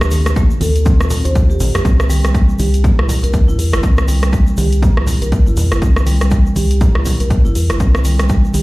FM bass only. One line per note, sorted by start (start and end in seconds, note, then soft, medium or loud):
0.00 0.46 D2 loud
0.61 1.20 D2 medium
1.25 1.57 D2 medium
1.60 1.72 A1 medium
1.75 1.83 F2 medium
1.85 2.44 C2 loud
2.59 3.18 C2 loud
3.23 3.48 C2 medium
3.49 3.56 G1 loud
3.59 3.75 E2 medium
3.73 3.81 G1 medium
3.83 4.42 C2 loud
4.58 5.17 C2 medium
5.22 5.46 C2 medium
5.47 5.55 G1 loud
5.57 5.73 E2 loud
5.72 5.79 G1 medium
5.82 6.41 C2 loud
6.56 7.15 C2 medium
7.20 7.45 C2 medium
7.45 7.53 G1 loud
7.56 7.71 E2 loud
7.70 7.78 G1 medium
7.80 8.39 C2 loud
8.54 8.62 C2 medium